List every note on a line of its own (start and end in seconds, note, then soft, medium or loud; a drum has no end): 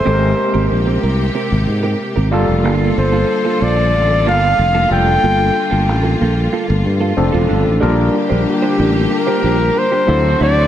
0.00 1.01 C5 medium
0.05 0.32 G#1 medium
0.05 2.30 C3 medium
0.05 2.28 G#3 medium
0.05 2.30 A#3 medium
0.05 0.35 C4 medium
0.05 2.28 C4 medium
0.05 2.30 G4 medium
0.05 0.36 G4 medium
0.05 2.29 G4 medium
0.05 0.13 A4 medium
0.05 0.36 A#4 medium
0.14 2.32 A#4 medium
0.38 muted clean electric guitar stroke medium
0.54 0.67 G#1 medium
0.54 0.70 C4 soft
0.54 0.70 G4 medium
0.54 0.70 A#4 medium
0.71 0.97 A#1 medium
0.71 muted clean electric guitar stroke soft
0.86 1.01 C4 soft
0.86 1.02 G4 medium
0.86 1.02 A#4 medium
1.02 1.29 C2 medium
1.02 1.23 C4 medium
1.02 1.18 G4 medium
1.02 1.17 A#4 medium
1.18 muted clean electric guitar stroke medium
1.35 1.56 C4 medium
1.35 1.50 G4 medium
1.35 1.50 A#4 medium
1.51 1.65 G#1 medium
1.51 muted clean electric guitar stroke soft
1.67 1.94 G#2 medium
1.67 muted clean electric guitar stroke soft
1.83 1.98 C4 medium
1.83 1.99 G4 medium
1.83 1.99 A#4 medium
1.99 muted clean electric guitar stroke soft
2.16 2.34 G#1 medium
2.16 2.31 C4 soft
2.16 2.32 G4 medium
2.16 2.32 A#4 medium
2.31 2.46 G1 medium
2.31 7.13 D3 medium
2.31 4.86 G3 medium
2.31 2.53 A#3 medium
2.31 4.87 A#3 medium
2.31 7.78 F4 medium
2.31 4.87 F4 medium
2.31 2.48 F4 medium
2.31 4.89 A4 medium
2.31 2.47 A4 loud
2.31 4.88 A4 medium
2.48 2.65 F1 medium
2.48 muted clean electric guitar stroke soft
2.64 2.90 G1 loud
2.64 2.94 A#3 medium
2.64 2.95 F4 medium
2.64 2.95 A4 loud
2.96 3.23 G1 medium
2.96 3.64 C5 medium
2.96 muted clean electric guitar stroke soft
3.12 3.27 A#3 soft
3.12 3.28 F4 medium
3.12 3.29 A4 medium
3.29 muted clean electric guitar stroke soft
3.45 3.60 A#3 medium
3.45 3.61 F4 medium
3.45 3.61 A4 medium
3.61 3.94 A#1 medium
3.61 3.82 A#3 medium
3.61 3.77 F4 medium
3.61 3.76 A4 medium
3.61 4.27 D5 loud
3.78 muted clean electric guitar stroke soft
3.94 4.27 A1 medium
4.11 muted clean electric guitar stroke soft
4.26 4.52 G1 medium
4.26 4.47 A#3 medium
4.26 4.43 F4 medium
4.26 4.42 A4 medium
4.26 4.88 F5 loud
4.43 muted clean electric guitar stroke soft
4.59 4.84 F1 medium
4.59 muted clean electric guitar stroke soft
4.75 4.90 A#3 medium
4.75 4.90 F4 medium
4.75 4.91 A4 medium
4.90 5.16 F1 medium
4.90 7.13 G3 medium
4.90 7.13 A#3 medium
4.90 7.15 A#3 medium
4.90 7.13 F4 medium
4.90 7.14 A4 medium
4.90 6.17 G5 loud
4.90 muted clean electric guitar stroke soft
5.08 muted clean electric guitar stroke soft
5.23 5.49 G1 loud
5.23 5.53 A#3 medium
5.23 5.53 F4 medium
5.23 5.54 A4 medium
5.56 muted clean electric guitar stroke soft
5.71 5.89 G1 medium
5.71 5.86 A#3 medium
5.71 5.87 F4 medium
5.71 5.87 A4 medium
5.88 6.14 A1 medium
5.88 muted clean electric guitar stroke soft
6.03 6.19 A#3 medium
6.03 6.20 F4 medium
6.03 6.20 A4 medium
6.20 6.46 A#1 medium
6.20 6.41 A#3 medium
6.20 6.36 F4 medium
6.20 6.35 A4 medium
6.36 muted clean electric guitar stroke medium
6.52 6.73 A#3 medium
6.52 6.68 F4 medium
6.52 6.67 A4 medium
6.68 6.82 G1 loud
6.68 muted clean electric guitar stroke soft
6.84 7.11 G2 medium
6.84 muted clean electric guitar stroke soft
7.01 7.16 A#3 medium
7.01 7.16 F4 medium
7.01 7.16 A4 medium
7.17 7.30 F1 medium
7.17 7.81 D3 medium
7.17 7.82 F3 medium
7.17 7.81 A3 medium
7.17 7.82 C4 medium
7.17 7.80 D4 medium
7.17 7.82 A4 medium
7.17 muted clean electric guitar stroke soft
7.32 7.47 E1 medium
7.32 7.47 D4 medium
7.32 7.48 F4 medium
7.32 7.49 A4 medium
7.48 7.63 G1 medium
7.48 7.70 D4 medium
7.48 7.65 F4 medium
7.48 7.64 A4 medium
7.65 7.79 A1 medium
7.65 muted clean electric guitar stroke medium
7.80 8.08 A#1 loud
7.80 10.06 D3 medium
7.80 10.04 G3 medium
7.80 10.04 A#3 medium
7.80 10.06 A#3 medium
7.80 8.02 D4 medium
7.80 10.04 D4 medium
7.80 10.04 F4 medium
7.80 7.97 G4 medium
7.80 10.06 G4 medium
7.80 7.96 A#4 medium
7.80 10.05 A#4 medium
7.98 muted clean electric guitar stroke medium
8.14 muted clean electric guitar stroke soft
8.29 8.44 A#1 medium
8.29 8.45 D4 medium
8.29 8.45 G4 medium
8.29 8.46 C5 medium
8.46 9.08 G4 medium
8.46 muted clean electric guitar stroke soft
8.62 8.77 D4 medium
8.62 8.78 G4 medium
8.62 8.79 C5 medium
8.78 9.05 A1 medium
8.78 8.95 D4 medium
8.78 8.95 G4 medium
8.78 8.94 A#4 medium
8.95 muted clean electric guitar stroke soft
9.11 9.80 A#4 medium
9.11 muted clean electric guitar stroke soft
9.27 9.42 D4 medium
9.27 9.43 G4 medium
9.27 9.44 C5 medium
9.44 9.69 A#1 medium
9.44 9.60 D4 medium
9.44 9.60 G4 medium
9.44 9.60 C5 medium
9.76 10.42 C5 loud
9.76 muted clean electric guitar stroke soft
9.92 10.09 D4 medium
9.92 10.07 G4 medium
9.92 10.08 A#4 medium
10.07 10.34 D2 medium
10.07 10.67 E3 medium
10.07 10.67 F#3 medium
10.07 10.67 C4 medium
10.07 10.67 D4 medium
10.07 10.29 E4 medium
10.07 10.67 E4 medium
10.07 10.67 F#4 medium
10.07 10.24 F#4 medium
10.07 10.67 A4 medium
10.07 10.24 C5 medium
10.25 muted clean electric guitar stroke soft
10.41 10.66 D2 loud
10.41 10.61 E4 medium
10.41 10.57 F#4 medium
10.41 10.57 D5 medium
10.41 10.67 D5 loud
10.58 muted clean electric guitar stroke medium